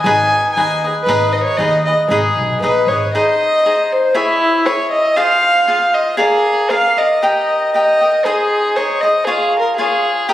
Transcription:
0.01 0.38 G#1 loud
0.01 0.51 G#5 loud
0.06 0.57 D#4 medium
0.06 0.56 G#4 medium
0.06 0.56 B4 medium
0.06 0.58 D#5 medium
0.53 0.90 D#2 medium
0.53 0.83 D#4 medium
0.53 0.83 G#4 medium
0.53 0.91 G#5 medium
0.57 0.83 B4 medium
0.57 0.83 D#5 medium
0.84 1.07 G#4 soft
0.84 1.07 B4 soft
0.84 1.08 D#5 soft
1.04 1.40 G#1 medium
1.04 1.34 B4 medium
1.08 1.58 D#4 medium
1.08 1.60 G#4 medium
1.08 1.59 B4 medium
1.08 1.60 D#5 medium
1.33 1.43 D#5 medium
1.44 1.58 C#5 medium
1.57 1.92 D#2 loud
1.57 1.85 D#4 medium
1.57 1.86 G#4 medium
1.57 1.86 B4 medium
1.57 1.84 D#5 medium
1.57 1.85 D#5 medium
1.85 2.10 G#4 soft
1.85 2.10 B4 soft
1.85 2.08 D#5 medium
1.85 2.10 D#5 soft
2.08 2.26 G#1 medium
2.08 2.61 D#4 medium
2.08 2.58 G#4 medium
2.08 2.63 G#4 medium
2.08 2.62 B4 medium
2.08 2.62 D#5 medium
2.36 2.58 B1 medium
2.60 2.85 A#1 medium
2.60 2.89 D#4 medium
2.60 2.89 G#4 medium
2.60 2.90 B4 medium
2.60 2.89 B4 medium
2.60 2.89 D#5 medium
2.86 3.09 G#1 medium
2.86 3.13 C#5 medium
2.86 3.14 D#5 soft
2.92 3.14 G#4 soft
2.92 3.14 B4 soft
3.14 3.65 D#4 medium
3.14 3.65 G#4 medium
3.14 3.65 C5 medium
3.14 3.94 D#5 medium
3.14 3.65 D#5 medium
3.66 4.14 D#4 medium
3.66 4.14 G#4 medium
3.66 4.15 C5 medium
3.66 4.15 D#5 medium
3.93 4.19 C5 medium
4.14 4.65 E4 medium
4.14 4.67 E4 loud
4.14 4.66 G#4 medium
4.14 4.66 C#5 medium
4.14 4.66 E5 medium
4.66 5.16 E4 medium
4.66 5.16 G#4 medium
4.66 4.91 C#5 medium
4.66 5.17 C#5 medium
4.66 5.17 E5 medium
4.91 5.18 D#5 medium
5.17 5.67 F4 medium
5.17 5.66 G#4 medium
5.17 5.68 C5 medium
5.17 5.96 F5 loud
5.17 5.68 F5 medium
5.68 6.17 F4 medium
5.68 6.16 G#4 medium
5.68 6.18 C5 medium
5.68 6.17 F5 medium
5.94 6.19 D#5 medium
6.17 6.69 G#4 medium
6.17 6.72 G#4 medium
6.17 6.69 A#4 medium
6.17 6.70 D5 medium
6.17 6.70 F5 medium
6.70 6.97 G#4 medium
6.70 6.97 A#4 soft
6.70 6.96 D5 medium
6.70 6.99 F5 loud
6.70 6.96 F5 medium
6.97 7.22 A#4 soft
6.97 7.22 D5 soft
6.97 7.73 D#5 medium
6.97 7.22 F5 soft
7.22 7.73 G4 medium
7.22 7.74 A#4 medium
7.22 7.74 D#5 medium
7.22 7.74 G5 medium
7.74 8.01 G4 medium
7.74 8.01 A#4 soft
7.74 8.27 D#5 medium
7.74 8.00 D#5 medium
7.74 8.00 G5 medium
8.01 8.26 A#4 soft
8.01 8.25 D#5 soft
8.01 8.25 G5 soft
8.25 8.75 D#4 medium
8.25 8.78 G#4 medium
8.25 8.75 G#4 medium
8.25 8.76 C5 medium
8.25 8.77 D#5 medium
8.76 9.03 D#4 medium
8.76 9.03 G#4 medium
8.76 9.02 C5 medium
8.76 9.03 C#5 medium
8.76 9.01 D#5 medium
9.01 9.27 G#4 soft
9.01 9.27 C5 soft
9.01 9.26 D#5 medium
9.01 9.27 D#5 medium
9.25 9.77 F4 medium
9.25 9.59 G#4 medium
9.25 9.78 G#4 medium
9.25 9.78 C#5 medium
9.25 9.78 F5 medium
9.59 9.76 A#4 medium
9.77 10.28 F4 medium
9.77 10.30 G#4 medium
9.77 10.29 G#4 medium
9.77 10.29 C#5 medium
9.77 10.29 F5 medium
10.29 10.34 G4 medium
10.29 10.34 A#4 medium
10.29 10.34 D#5 medium
10.29 10.34 G5 medium

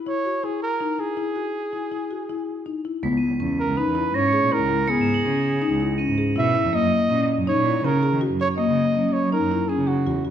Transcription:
0.07 0.18 E4 medium
0.07 0.46 C#5 medium
0.25 0.37 F#4 medium
0.43 0.67 E4 medium
0.43 0.62 G#4 medium
0.62 1.01 A#4 medium
0.81 0.92 D#4 medium
0.98 1.10 E4 medium
0.98 2.67 G#4 medium
1.17 1.29 E4 medium
1.36 1.59 F#4 soft
1.73 1.85 E4 medium
1.92 2.03 E4 medium
2.11 2.22 F#4 medium
2.29 2.53 E4 medium
2.66 2.78 D#4 medium
2.85 2.97 E4 soft
3.03 3.11 C#2 medium
3.03 3.26 B3 medium
3.03 3.58 B6 soft
3.13 3.28 C#2 medium
3.17 3.69 D#7 soft
3.40 3.56 E2 medium
3.40 3.63 C#4 medium
3.59 3.79 A#4 medium
3.68 3.76 C#2 medium
3.77 3.89 D#4 medium
3.77 4.17 B4 medium
3.86 4.09 E2 medium
3.95 4.07 E4 medium
4.14 4.30 G#2 medium
4.14 4.26 C#4 medium
4.14 4.54 C#5 medium
4.14 4.69 A#6 medium
4.28 4.80 C#7 soft
4.33 4.45 G#4 medium
4.42 4.57 A#2 medium
4.52 4.63 E4 medium
4.52 4.91 A#4 medium
4.61 4.76 C#2 medium
4.69 4.81 E4 medium
4.88 5.12 B3 medium
4.88 6.00 G#4 medium
4.88 5.42 C#7 medium
4.98 5.21 G#2 medium
4.98 5.54 E7 soft
5.14 5.65 F#7 soft
5.26 5.41 C#3 medium
5.26 5.49 C#4 medium
5.53 5.68 C#3 medium
5.62 5.74 D#4 medium
5.71 5.87 C#2 medium
5.80 5.92 E4 medium
5.98 6.11 C#4 medium
5.98 6.53 D#7 soft
6.08 6.24 G#2 medium
6.18 6.30 G#4 medium
6.36 6.59 B2 medium
6.36 6.48 E4 medium
6.36 6.76 E5 medium
6.55 6.67 E4 medium
6.65 6.72 E2 medium
6.73 6.81 F#2 loud
6.73 6.96 A#3 medium
6.73 7.30 D#5 loud
6.82 6.98 F#2 medium
7.09 7.25 A#2 medium
7.09 7.33 C#4 medium
7.37 7.45 F#2 medium
7.47 7.59 D#4 medium
7.47 7.86 C#5 medium
7.56 7.79 A#2 medium
7.65 7.77 E4 medium
7.83 7.99 C#3 medium
7.83 7.96 C#4 medium
7.83 8.22 A#4 medium
8.03 8.14 G#4 medium
8.12 8.27 D#3 medium
8.21 8.33 F#4 medium
8.30 8.46 F#2 medium
8.40 8.51 F#4 medium
8.40 8.49 C#5 medium
8.58 8.81 A#3 medium
8.58 9.14 D#5 medium
8.67 8.90 C#3 medium
8.95 9.11 F#3 medium
8.95 9.19 C#4 medium
9.13 9.31 C#5 medium
9.23 9.38 F#3 medium
9.32 9.44 D#4 medium
9.32 9.70 A#4 medium
9.41 9.56 F#2 medium
9.51 9.63 E4 medium
9.69 9.81 C#4 medium
9.69 9.89 G#4 medium
9.78 9.93 C#3 medium
9.87 10.24 F#4 medium
9.87 9.99 G#4 medium
10.06 10.29 E2 medium
10.06 10.18 F#4 medium
10.25 10.30 F#4 medium

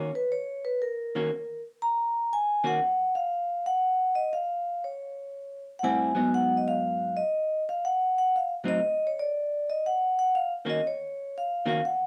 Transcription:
0.00 0.10 D#3 medium
0.00 0.10 A#3 medium
0.00 0.11 C#4 medium
0.00 0.11 F#4 medium
0.00 0.12 C#5 medium
0.15 0.32 B4 medium
0.32 0.65 C#5 medium
0.65 0.81 B4 medium
0.82 1.60 A#4 medium
1.15 1.30 D#3 medium
1.15 1.30 A#3 medium
1.15 1.30 C#4 medium
1.15 1.30 F#4 medium
1.82 2.33 A#5 loud
2.33 2.63 G#5 loud
2.64 2.79 D#3 medium
2.64 2.79 A#3 medium
2.64 2.79 C#4 medium
2.64 2.79 F#4 medium
2.64 3.12 F#5 loud
3.15 3.66 F5 loud
3.66 4.17 F#5 medium
4.15 4.23 D#5 medium
4.33 4.83 F5 medium
4.84 5.62 C#5 medium
5.79 6.12 A2 medium
5.79 5.83 F#5 medium
5.84 6.12 G3 medium
5.84 6.12 C4 medium
5.84 6.12 E4 medium
5.84 6.29 G#5 loud
6.15 7.21 G#2 medium
6.15 7.21 F#3 medium
6.15 7.22 B3 medium
6.15 7.22 D#4 medium
6.34 6.55 F#5 loud
6.57 6.65 D#5 medium
6.68 7.17 F5 loud
7.17 7.62 D#5 loud
7.69 7.84 F5 medium
7.85 8.17 F#5 medium
8.18 8.32 F#5 medium
8.36 8.50 F5 medium
8.64 8.79 A2 medium
8.64 8.79 F#3 medium
8.64 8.80 C4 medium
8.64 8.80 D#4 medium
8.68 9.08 D#5 medium
9.07 9.15 C#5 medium
9.19 9.68 D5 medium
9.70 9.84 D#5 medium
9.86 10.18 F#5 medium
10.19 10.32 F#5 medium
10.35 10.49 F5 loud
10.65 10.80 D#3 medium
10.65 10.80 A#3 medium
10.65 10.80 C#4 medium
10.65 10.81 F#4 medium
10.69 10.84 D#5 medium
10.87 11.35 C#5 medium
11.38 11.68 F5 medium
11.66 11.80 D#3 medium
11.66 11.80 A#3 medium
11.66 11.80 C#4 medium
11.66 11.81 F#4 medium
11.66 11.82 F5 medium
11.85 12.07 F#5 medium

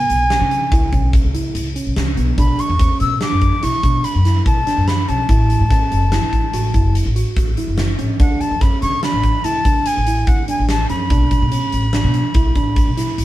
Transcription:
0.00 0.22 B3 medium
0.00 1.10 G#5 medium
0.10 0.35 B1 medium
0.10 closed hi-hat soft
0.30 0.64 C#4 medium
0.30 snare medium
0.30 closed hi-hat medium
0.41 0.58 C#3 medium
0.51 closed hi-hat medium
0.72 0.89 C#2 medium
0.72 0.89 E4 medium
0.72 kick loud
0.72 closed hi-hat medium
0.93 1.18 B1 medium
0.93 1.26 C#4 medium
0.93 kick medium
0.93 closed hi-hat soft
1.13 kick medium
1.13 closed hi-hat medium
1.24 1.41 C#2 medium
1.34 1.68 E4 medium
1.34 closed hi-hat medium
1.55 1.72 C#2 medium
1.55 closed hi-hat medium
1.76 2.09 C#4 medium
1.76 closed hi-hat medium
1.86 1.95 B1 medium
1.96 2.15 C#2 medium
1.96 snare medium
1.96 closed hi-hat medium
2.17 2.36 B1 medium
2.17 2.34 B3 medium
2.17 closed hi-hat soft
2.38 2.55 B1 medium
2.38 2.72 D4 medium
2.38 2.62 B5 medium
2.38 kick loud
2.38 closed hi-hat medium
2.59 3.01 C#6 medium
2.59 closed hi-hat medium
2.70 2.86 E2 medium
2.79 3.13 C#4 medium
2.79 kick loud
2.79 closed hi-hat medium
3.00 3.17 B2 medium
3.00 3.20 E6 medium
3.00 closed hi-hat medium
3.21 3.55 D4 medium
3.21 3.65 D6 medium
3.21 snare medium
3.21 closed hi-hat medium
3.32 3.49 F#2 medium
3.41 kick medium
3.41 closed hi-hat medium
3.63 3.71 B1 medium
3.63 3.80 E4 medium
3.63 4.06 C#6 medium
3.63 closed hi-hat medium
3.83 4.00 B2 medium
3.83 4.17 D4 medium
3.83 kick medium
3.83 closed hi-hat medium
4.04 4.46 B5 medium
4.04 closed hi-hat medium
4.15 4.40 F#2 medium
4.25 4.59 E4 medium
4.25 snare soft
4.25 closed hi-hat soft
4.46 4.63 B2 medium
4.46 4.89 A5 medium
4.46 kick medium
4.46 closed hi-hat medium
4.67 5.00 D4 medium
4.67 snare soft
4.67 closed hi-hat medium
4.77 5.02 F#2 medium
4.88 5.10 B5 medium
4.88 snare medium
4.88 closed hi-hat medium
5.08 5.25 B1 medium
5.08 5.25 C#4 medium
5.08 6.95 A5 medium
5.08 closed hi-hat medium
5.29 5.54 A1 medium
5.29 5.63 E4 medium
5.29 kick medium
5.29 closed hi-hat medium
5.50 closed hi-hat medium
5.61 5.77 A2 medium
5.71 6.04 C#4 medium
5.71 kick loud
5.71 snare soft
5.71 closed hi-hat medium
5.92 6.16 F#1 medium
5.92 closed hi-hat medium
6.12 6.46 E4 medium
6.12 snare loud
6.12 closed hi-hat medium
6.23 6.39 A2 medium
6.33 kick medium
6.33 closed hi-hat medium
6.53 6.70 A1 medium
6.53 6.71 F#4 medium
6.53 closed hi-hat medium
6.74 6.99 F#1 medium
6.74 7.08 E4 medium
6.74 kick medium
6.74 closed hi-hat medium
6.95 closed hi-hat medium
7.06 7.22 A1 medium
7.16 7.49 F#4 medium
7.16 closed hi-hat medium
7.36 7.53 A1 medium
7.36 kick medium
7.36 closed hi-hat medium
7.57 7.91 E4 medium
7.57 closed hi-hat medium
7.68 7.93 F#1 medium
7.78 snare loud
7.78 closed hi-hat medium
7.99 8.07 A1 medium
7.99 8.16 C#4 medium
7.99 closed hi-hat medium
8.20 8.36 D2 medium
8.20 8.53 D4 medium
8.20 8.42 F#5 medium
8.20 kick medium
8.20 closed hi-hat medium
8.41 8.63 A5 medium
8.41 closed hi-hat medium
8.51 8.68 F#2 medium
8.61 8.95 C#4 medium
8.61 8.81 B5 medium
8.61 kick loud
8.61 snare soft
8.61 closed hi-hat medium
8.82 8.99 D3 medium
8.82 9.01 C#6 loud
8.82 closed hi-hat medium
9.03 9.37 D4 medium
9.03 9.46 B5 medium
9.03 snare medium
9.03 closed hi-hat medium
9.14 9.30 A1 medium
9.23 kick medium
9.23 closed hi-hat medium
9.44 9.53 D2 medium
9.44 9.61 E4 medium
9.44 9.88 A5 medium
9.44 closed hi-hat medium
9.65 9.82 D3 medium
9.65 9.99 D4 medium
9.65 kick medium
9.65 closed hi-hat medium
9.86 10.29 G#5 medium
9.86 closed hi-hat medium
9.97 10.22 A1 medium
10.07 10.41 E4 medium
10.07 closed hi-hat medium
10.27 10.44 D3 medium
10.27 10.48 F#5 medium
10.27 kick loud
10.27 closed hi-hat medium
10.48 10.82 D4 medium
10.48 10.68 G#5 medium
10.48 closed hi-hat medium
10.59 10.84 A1 medium
10.69 10.89 A5 medium
10.69 snare medium
10.69 closed hi-hat medium
10.90 11.07 F#2 medium
10.90 11.07 C#4 medium
10.90 13.25 B5 medium
10.90 closed hi-hat medium
11.10 11.35 B1 medium
11.10 11.44 D4 medium
11.10 kick loud
11.10 closed hi-hat medium
11.31 kick medium
11.31 closed hi-hat medium
11.42 11.59 B2 medium
11.52 11.86 C#4 medium
11.52 closed hi-hat medium
11.72 11.98 A1 medium
11.72 closed hi-hat medium
11.93 12.27 D4 medium
11.93 snare medium
11.93 closed hi-hat medium
12.04 12.21 B2 medium
12.14 closed hi-hat medium
12.34 12.52 B1 medium
12.34 12.52 E4 medium
12.34 kick loud
12.34 closed hi-hat medium
12.55 12.81 A1 medium
12.55 12.90 D4 medium
12.55 kick medium
12.55 closed hi-hat medium
12.76 kick medium
12.76 closed hi-hat medium
12.87 13.04 B1 medium
12.97 13.25 E4 medium
12.97 snare soft
12.97 closed hi-hat medium
13.18 13.25 B1 medium
13.18 closed hi-hat medium

